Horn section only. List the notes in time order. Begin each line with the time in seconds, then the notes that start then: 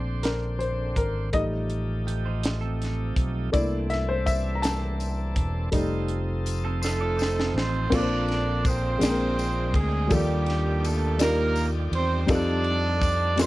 6.84 A3 C4 D#4 A4
7.58 C4 C5
7.94 D4 F4 A4 D5
8.67 C4 F4 G#4 C5
9.76 G#3 G#4
10.13 G3 A#3 D4 G4
10.86 A3 A4
11.22 A#3 A#4
11.95 C4 C5
12.31 D4 G4 A4 D5
13.41 C4 D#4 A4 C5